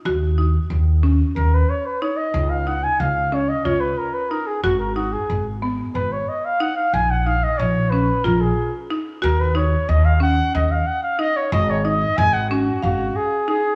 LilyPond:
<<
  \new Staff \with { instrumentName = "Trumpet" } { \time 7/8 \key gis \dorian \tempo 4 = 92 r2 ais'16 b'16 cis''16 b'16 cis''16 dis''16~ | dis''16 eis''16 fis''16 gis''16 eis''8 cis''16 dis''16 cis''16 b'16 ais'16 b'16 ais'16 gis'16 | fis'16 ais'16 fis'16 gis'8 r8. b'16 cis''16 dis''16 eis''16 fis''16 eis''16 | gis''16 fis''16 eis''16 dis''16 cis''8 b'8 ais'16 gis'8 r8. |
ais'16 b'16 cis''8 dis''16 eis''16 fis''8 dis''16 eis''16 fis''16 eis''16 dis''16 cis''16 | dis''16 cis''16 dis''8 gis''16 fis''16 fis'8 fis'8 gis'8 gis'8 | }
  \new Staff \with { instrumentName = "Marimba" } { \time 7/8 \key gis \dorian fis'8 dis'4 cis'4 r8 dis'8~ | dis'8 dis'4 cis'8 eis'4 dis'8 | fis'8 dis'4 b4 r8 dis'8~ | dis'8 dis'4 cis'8 eis'4 dis'8 |
fis'8 dis'4 cis'4 r8 dis'8~ | dis'8 dis'4 cis'8 eis''4 dis'8 | }
  \new Staff \with { instrumentName = "Upright bass" } { \clef bass \time 7/8 \key gis \dorian dis,4 dis,4 dis,8 r4 | cis,4 cis,4 cis,8 r4 | gis,,4 gis,,4 gis,,8 r4 | ais,,4 ais,,4 ais,,8 r4 |
dis,4 dis,4 dis,8 r4 | gis,,4 gis,,4 gis,,8 r4 | }
>>